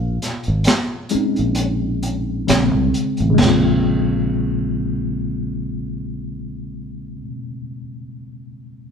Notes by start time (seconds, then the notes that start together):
Already playing: A#1 F4 F5
0.22 snare, closed hi-hat
0.43 closed hi-hat
0.48 G#1
0.64 finger snap, snare, closed hi-hat
1.09 G#3 C4 C#4 D#4, closed hi-hat
1.15 muted fingered electric bass stroke
1.36 A#1, closed hi-hat
1.55 closed hi-hat
2.03 closed hi-hat
2.47 A#1 C#3 G#3 C4, finger snap, snare, closed hi-hat
2.75 C2
2.94 closed hi-hat
3.17 A1, closed hi-hat
3.30 C#3 G#3
3.38 A#1 A#3, snare, floor tom, china
3.43 C4 F4